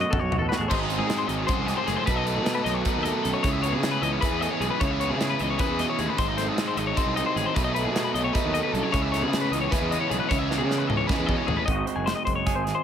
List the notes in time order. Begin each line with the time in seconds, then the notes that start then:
Already playing: B2 F#3 D#4 F#4
0.01 D#5
0.11 A1 F#4 A4, kick, mid tom
0.19 B1 C#5
0.31 B2 F#4, floor tom
0.39 A1 A4
0.49 F#4 B4, snare
0.58 A1 G#4 A4
0.68 G#1 G#2 D#3 F#3 D#4 C5, kick, crash
0.73 C4 F#4 G#4
0.79 D#5
0.88 C4 C5, closed hi-hat
0.98 G#2 G#4
1.10 snare, closed hi-hat
1.18 C5
1.28 G#1 G#3 D#5, closed hi-hat
1.38 C#5
1.47 F#2 G#2 D#3 F#3 C4 C5, kick, closed hi-hat
1.51 F#4 G#4
1.58 C2
1.66 G#2 D#5, snare, closed hi-hat
1.77 C5
1.87 F#1 A2 G#4, snare, closed hi-hat
1.96 C5
2.06 B1 B2 D#3 F#3 B3 D#4 B4, kick, closed hi-hat
2.10 D#4 A4
2.16 D#5
2.26 A3 B4, closed hi-hat
2.35 B2 G#4
2.46 snare, closed hi-hat
2.55 B4
2.64 B1 F#3 D#5, snare, closed hi-hat
2.74 C#5
2.83 D#4 A4 B4, kick, closed hi-hat
2.87 B2 D#3 F#3 B3
2.96 D#2
3.03 A3 D#5, closed hi-hat
3.13 B4
3.23 B1 F#2 A4, closed hi-hat
3.34 C#5
3.43 C#2 C#3 G#3 C#4 E4 C#5, kick, closed hi-hat
3.47 E4 G#4
3.53 E5
3.63 B3 C#5, closed hi-hat
3.72 C#3 G#4
3.83 snare, closed hi-hat
3.91 B4
4.02 C#2 E3 D#5, closed hi-hat
4.12 C#5
4.21 C#3 G#3 C#4 E4 B4, kick, closed hi-hat
4.26 G#4
4.31 E2
4.41 A3 D#5, closed hi-hat
4.51 B3 C#5
4.60 B1 G#2 G#4, closed hi-hat
4.70 B4
4.80 C#2 C#3 G#3 C#4 E4 G#4 C#5, kick, closed hi-hat
4.91 E5
5.00 B3 C#5, closed hi-hat
5.10 C#3 G#4
5.21 snare, closed hi-hat
5.30 B4
5.39 C#2 E3 D#5, closed hi-hat
5.50 C#5
5.58 C#3 G#3 C#4 E4 G#4 B4, kick, closed hi-hat
5.62 C#3
5.69 E2
5.79 B2 D#5, snare, closed hi-hat
5.90 C#5
5.98 D#2 A2 G#4, closed hi-hat
6.09 B4
6.17 G#1 G#2 D#3 F#3 C4 D#4 C5, kick, closed hi-hat
6.28 D#5
6.37 A3 C5, snare, closed hi-hat
6.47 G#2 C4 G#4
6.58 snare, closed hi-hat
6.68 C5
6.76 G#1 G#3 D#5, closed hi-hat
6.87 C#5
6.94 G#2 D#3 F#3 C4 D#4 C5, kick, closed hi-hat
7.06 C2
7.16 C4 D#5, closed hi-hat
7.26 C5
7.36 A1 D#3 G#4, closed hi-hat
7.46 C5
7.54 B1 B2 F#3 A3 D#4 B4, kick, closed hi-hat
7.59 D#4
7.64 D#5
7.75 A3 B4, closed hi-hat
7.85 B2 G#4
7.96 snare, closed hi-hat
8.04 B4
8.14 B1 F#3 D#5, closed hi-hat
8.24 C#5
8.33 F#3 A3 D#4 B4, kick, closed hi-hat
8.37 B2
8.44 D#2
8.54 A3 D#5, closed hi-hat
8.63 B4
8.72 C2 F#2 A4, closed hi-hat
8.83 C#5
8.91 C#2 C#3 E3 G#3 C#4 E4 C#5, kick, closed hi-hat
9.02 E5
9.12 A3 C#5, snare, closed hi-hat
9.21 C#3 B3 G#4
9.33 snare, closed hi-hat
9.41 B4
9.51 C#2 E3 D#5, closed hi-hat
9.61 C#5
9.70 C#3 E3 G#3 C#4 B4, kick, snare, closed hi-hat
9.74 E4
9.81 E2
9.91 B3 D#5, closed hi-hat
10.01 C#5
10.10 B1 G#2 G#4, closed hi-hat
10.20 B4
10.29 C#2 C#3 E3 G#3 E4 C#5, kick, closed hi-hat
10.33 C#4
10.39 E5
10.49 B3 C#5, snare
10.58 C#3 G#4
10.71 snare
10.78 B4
10.87 C#2 E3 D#5, mid tom
10.97 C#5
11.07 C#3 E3 G#3 C#4 B4, kick, snare
11.11 C#3
11.18 E2
11.26 B2 D#5, kick
11.37 C#5
11.47 A1 A2 G#4, floor tom
11.57 B4
11.66 G#1 G#2 C4 D#4 D#5, kick, closed hi-hat
11.70 F#4
11.86 D#4 C5, closed hi-hat
11.96 F#1 G#4
12.06 G#3 C5, snare, closed hi-hat
12.15 D#5
12.25 F#1 C5, kick, closed hi-hat
12.36 C#5
12.46 G#4, kick, snare, closed hi-hat
12.55 G#1 C5
12.65 D#3 G#4, snare, closed hi-hat
12.75 C5